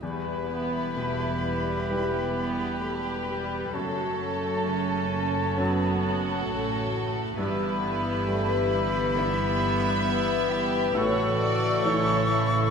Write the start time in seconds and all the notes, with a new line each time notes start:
Already playing: B3
0.01 E1 E2 G3 B3 E4 G4 B4 B5
0.33 B2
0.48 B3
0.64 E4
0.95 B2 A3 G4
1.27 E5
1.42 G3
1.58 G4
1.89 E2 G3 E4 G4 B4
2.21 B2
2.34 B3
2.81 A3 G4
3.14 E5
3.29 G3
3.44 G4
3.73 F#1 F#2 F#3 A3 C#4 F#4 A4 C#5 A5
4.05 C#3
4.21 A3
4.35 C#4
4.65 C#3 C#4 F#4
4.97 C#5
5.27 F#4
5.56 F#2 F#3 B3 C#4 F#4 A4 B4
5.89 C#3
6.02 A4
6.19 C#4
6.48 A1 A2 A3 F#4
6.79 C#5
6.93 A3
7.09 F#4
7.38 G1 G2 E3 B3 E4 G4 B4 E5 B5
7.68 G3
7.82 B3
7.98 E4
8.27 G3 A3 B4
8.57 E5
8.70 G3
8.87 B4
9.15 G2 B3 E4 B4 E5
9.45 G3
9.75 E4
10.05 E4 B4
10.35 E5
10.52 G4
10.66 B4
10.95 A1 A2 C#3 E3 A3 F#4 A4 C#5 E5 C#6
11.26 E3
11.39 D5
11.85 E3 E4 A4 C#5
12.30 E4
12.44 A4